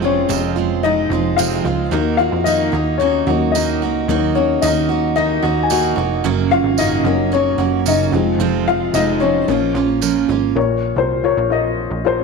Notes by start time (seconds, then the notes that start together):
Already playing: F1 F3 G#3 C5
0.02 F3 G#3 C4 C#4 F4 C#5
0.29 F1 F2 C3 F3 G#3 C4 F4, tambourine
0.56 F3 G#3 C4 F4
0.83 F3 G#3 C4 D#4 F4 D#5
1.10 F1 G#3 C4 F4
1.14 F3
1.37 F2 C3 F3 G#3 C4 F4 F5, tambourine
1.65 C#2 F3 G#3 C4 F4
1.91 D#2 D#3 A#3 D#4 F#4
2.17 D#4 F4 F#4 F5
2.32 F2
2.44 D#3 A#3 D#4 F#4 D#5, tambourine
2.72 D#2 A#3 D#4 F#4
2.98 D#3 A#3 C#5
3.02 C#4 D#4 F#4
3.27 D#2 F#3 A#3 D#4 F#4
3.52 D#3 A#3 D#4 D#5, tambourine
3.56 D#4 F#4
3.80 C#2 D#4 F#4
3.85 A#3
4.08 D#2 D#3 F#3 A#3 D#4 F#4
4.35 A#3 C#4 D#4 F#4 C#5
4.62 D#2 D#3 A#3 D#4 F#4 D#5, tambourine
4.89 A#3 D#4 F#4
5.16 D#3 A#3 D#4 F#4 D#5
5.42 D#2 A#3 D#4 F#4
5.63 G#5
5.70 D#3 A#3 D#4 F#4 F#5, tambourine
5.96 F1 A#3 D#4 F#4
6.24 F#1 F#2 C#3 F#3 A#3 C#4 F#4
6.51 F#3 A#3 C#4 F4 F#4 F5
6.64 G#1
6.78 F#2 C#3 F#3 A#3 C#4 D#4 F#4 D#5, tambourine
7.04 F#1 F#3 A#3 C#4 F#4
7.32 F#3 A#3 C#4 F#4 C#5
7.58 F#1 F#3 A#3 C#4 F#4
7.86 F#2 C#3 F#3 A#3 C#4 D#4 F#4 D#5, tambourine
8.12 F1 F3 G#3 C4 F4
8.38 F1 F2 C3 F3 G#3 C4 F4
8.68 F3 G#3 C4 F4 F5
8.94 F1 F2 C3 F3 G#3 C4 D#4 F4 D#5, tambourine
9.20 F3 G#3 C4 C#4 F4 C#5
9.47 A#1 F3 A#3 C#4 F4
9.75 A#1 A#3 C#4 F4
10.01 A#2 F3 A#3 C#4 F4, tambourine
10.29 G#1 A#3 C#4 F4
10.55 A#1 A#2 F4 A#4 C#5
10.96 C2 F4 A#4 C5
11.24 F4 A#4 C#5
11.37 A#1
11.50 F4 A#4 D#5
11.90 A#1
12.05 F4 A#4 C5
12.19 C#4 C#5